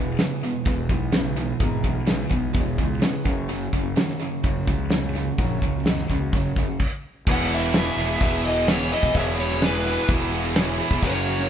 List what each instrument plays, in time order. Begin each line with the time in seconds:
Already playing: fingered electric bass E1, distorted electric guitar E2 B2, grand piano B4
0.07 steel-string acoustic guitar E3 G#3 B3 G#4
0.18 steel-string acoustic guitar E2 B2 E3 G#3 B3 G#4, distorted electric guitar E2 C#3, grand piano E4 G#4 B4, snare, open hi-hat
0.41 distorted electric guitar E2 B2, steel-string acoustic guitar E3 G#3 B3 G#4
0.54 steel-string acoustic guitar E3 G#3 B3 G#4
0.65 fingered electric bass E1, distorted electric guitar E2 B2, grand piano E4 G#4 B4, kick, open hi-hat
0.77 steel-string acoustic guitar E3 G#3 B3 G#4
0.89 fingered electric bass B1, distorted electric guitar E2 B2, steel-string acoustic guitar E3 G#3 B3 G#4, kick
1.12 distorted electric guitar E2 C#3, steel-string acoustic guitar E2 B2 E3 G#3 B3 G#4, grand piano E4 G#4 B4, snare, open hi-hat
1.24 steel-string acoustic guitar E3 G#3 B3 G#4
1.37 distorted electric guitar E2 B2
1.48 steel-string acoustic guitar E3 G#3 B3 G#4
1.60 fingered electric bass G#1, steel-string acoustic guitar E2 B2 E3 G#3 B3 G#4, distorted electric guitar E2 B2, grand piano E4 G#4 A#4, kick, open hi-hat
1.84 fingered electric bass B1, distorted electric guitar E2 B2, kick
1.94 steel-string acoustic guitar E3 G#3 B3 G#4
2.05 steel-string acoustic guitar E2 B2 E3 G#3 B3 G#4, distorted electric guitar E2 C#3, grand piano E4, snare, open hi-hat
2.10 grand piano G#4 B4
2.30 fingered electric bass B1, distorted electric guitar E2 B2, steel-string acoustic guitar E3 G#3 B3 G#4, kick
2.53 fingered electric bass E1, distorted electric guitar E2 B2, grand piano E4 G#4 C#5, kick, open hi-hat
2.66 steel-string acoustic guitar E3 G#3 B3 G#4
2.75 fingered electric bass C#2, distorted electric guitar E2 B2, steel-string acoustic guitar E3 G#3 B3 G#4, kick
2.88 steel-string acoustic guitar E3 G#3 B3 G#4
3.00 steel-string acoustic guitar E2 B2 E3 G#3 B3 G#4, distorted electric guitar E2 C#3, grand piano E4 G#4, snare, open hi-hat
3.04 grand piano B4
3.12 steel-string acoustic guitar E3 G#3 B3 G#4
3.22 fingered electric bass F#1, steel-string acoustic guitar F#2 C#3 F#3 A#3 C#4 F#4, distorted electric guitar F#2 C#3, grand piano F#4 A#4 C#5, kick
3.49 distorted electric guitar F#2 C#3, open hi-hat
3.73 fingered electric bass F#1, distorted electric guitar F#2 C#3, kick
3.82 steel-string acoustic guitar F#3 A#3 C#4 F#4
3.94 distorted electric guitar F#2 D#3, steel-string acoustic guitar F#2 C#3 F#3 A#3 C#4 F#4, grand piano F#4 A#4 C#5, snare, open hi-hat
4.09 snare
4.19 distorted electric guitar F#2 C#3, steel-string acoustic guitar F#3 A#3 C#4 F#4
4.43 fingered electric bass F#1, distorted electric guitar F#2 C#3, grand piano F#4 A#4 C#5, kick, open hi-hat
4.56 steel-string acoustic guitar F#3 A#3 C#4 F#4
4.67 fingered electric bass C#2, distorted electric guitar F#2 C#3, steel-string acoustic guitar F#3 A#3 C#4 F#4, kick
4.79 steel-string acoustic guitar F#3 A#3 C#4 F#4
4.90 steel-string acoustic guitar F#2 C#3 F#3 A#3 C#4 F#4, distorted electric guitar F#2 D#3, grand piano F#4 A#4 C#5, snare, open hi-hat
5.04 steel-string acoustic guitar F#3 A#3 C#4 F#4
5.16 distorted electric guitar F#2 C#3
5.27 steel-string acoustic guitar F#3 A#3 C#4 F#4
5.38 fingered electric bass A#1, distorted electric guitar F#2 C#3, steel-string acoustic guitar F#2 C#3 F#3 A#3 C#4 F#4, grand piano F#4 A#4 C#5, kick, open hi-hat
5.62 fingered electric bass C#2, distorted electric guitar F#2 C#3, kick
5.74 steel-string acoustic guitar F#3 A#3 C#4 F#4
5.84 steel-string acoustic guitar F#2 C#3 F#3 A#3 F#4, distorted electric guitar F#2 D#3, grand piano F#4 A#4 D#5, snare, open hi-hat
5.88 steel-string acoustic guitar C#4
5.98 snare
6.07 fingered electric bass C#2, distorted electric guitar F#2, steel-string acoustic guitar F#3 A#3 C#4 F#4, kick
6.12 distorted electric guitar C#3
6.20 steel-string acoustic guitar F#3 A#3 C#4 F#4
6.31 fingered electric bass F#1, distorted electric guitar F#2, grand piano F#4 A#4 C#5, kick, open hi-hat
6.35 distorted electric guitar C#3
6.44 steel-string acoustic guitar F#3 A#3 C#4 F#4
6.54 fingered electric bass F#1, distorted electric guitar F#2, steel-string acoustic guitar F#3 A#3 C#4 F#4, kick
6.59 distorted electric guitar C#3
6.68 steel-string acoustic guitar F#3 A#3 C#4 F#4
6.80 kick, crash
7.26 fingered electric bass E1, steel-string acoustic guitar E2 B2 E3 G#3 B3 G#4, distorted electric guitar E2 B2 E3 B3 E4 G#4, grand piano B3 E4 G#4 B4, kick, crash, shaker
7.31 lead electric guitar F#5
7.49 steel-string acoustic guitar E3 G#3 B3 G#4, open hi-hat
7.54 lead electric guitar E5
7.63 shaker
7.74 steel-string acoustic guitar E2 B2 E3 G#3 B3 G#4, distorted electric guitar E2 B2 E3 B3 E4 G#4, grand piano B3 E4 G#4 B4, snare, open hi-hat, shaker
7.97 fingered electric bass E1, distorted electric guitar E2 B2 E3 B3 E4 G#4, steel-string acoustic guitar E3 G#3 B3 G#4, open hi-hat, shaker
8.09 steel-string acoustic guitar E3 G#3 B3 G#4, shaker
8.21 fingered electric bass E1, distorted electric guitar B2 E3 B3 E4 G#4, grand piano B3 E4 G#4 B4, lead electric guitar E5, kick, open hi-hat, shaker
8.31 steel-string acoustic guitar E3 G#3 B3 G#4
8.43 steel-string acoustic guitar E3 G#3 B3 G#4, lead electric guitar D#5, open hi-hat, shaker
8.57 shaker
8.67 steel-string acoustic guitar E2 B2 E3 G#3 B3 G#4, distorted electric guitar B2 E3 B3 E4 G#4, grand piano B3 E4 G#4 B4, lead electric guitar C#5, snare, open hi-hat, shaker
8.90 distorted electric guitar E2 B2 E3 B3 E4 G#4, steel-string acoustic guitar E3 G#3 B3 G#4, lead electric guitar D#5, open hi-hat, shaker
9.01 fingered electric bass E1, steel-string acoustic guitar E3 G#3 B3 G#4, kick, shaker
9.12 fingered electric bass E1, steel-string acoustic guitar E2 B2 E3 G#3 B3 G#4, distorted electric guitar E2 E3, grand piano B3 E4 G#4 C#5, kick, open hi-hat
9.16 distorted electric guitar B2 B3 E4 G#4, lead electric guitar E5, shaker
9.36 steel-string acoustic guitar E3 G#3 B3 G#4, open hi-hat, shaker
9.40 lead electric guitar C#5
9.50 snare, shaker
9.59 steel-string acoustic guitar E2 B2 E3 G#3 B3 G#4, distorted electric guitar E2 B2, grand piano B3 E4 G#4 B4, snare, open hi-hat, shaker
9.64 distorted electric guitar E3 B3 E4 G#4, lead electric guitar B4
9.83 distorted electric guitar E2 B2 E3 B3 E4 G#4, steel-string acoustic guitar E3 G#3 B3 G#4, open hi-hat
9.97 shaker
10.08 fingered electric bass E1, distorted electric guitar E2 B2 E3 B3 E4 G#4, grand piano B3 E4 G#4 A#4, kick, open hi-hat, shaker
10.19 steel-string acoustic guitar E3 G#3 B3 G#4
10.30 steel-string acoustic guitar E3 G#3 B3 G#4, open hi-hat, shaker
10.42 steel-string acoustic guitar E3 G#3 B3 G#4, shaker
10.54 steel-string acoustic guitar E2 B2 E3 G#3 B3 G#4, distorted electric guitar E2 B2 E3 B3 E4 G#4, grand piano B3 E4 G#4 C#5, snare, open hi-hat, shaker
10.78 distorted electric guitar E2 B2 E3 B3 E4 G#4, steel-string acoustic guitar E3 G#3 B3 G#4, open hi-hat, shaker
10.90 fingered electric bass E1, steel-string acoustic guitar E3 G#3 B3 G#4, kick, shaker
11.02 fingered electric bass F#1, steel-string acoustic guitar F#2 C#3 F#3 A#3 C#4 F#4, distorted electric guitar F#2 C#3 F#3 A#3 C#4 F#4, grand piano A#3 C#4 F#4 A#4, lead electric guitar C#5, kick, open hi-hat, shaker
11.26 steel-string acoustic guitar F#3 A#3 C#4 F#4, open hi-hat, shaker
11.39 snare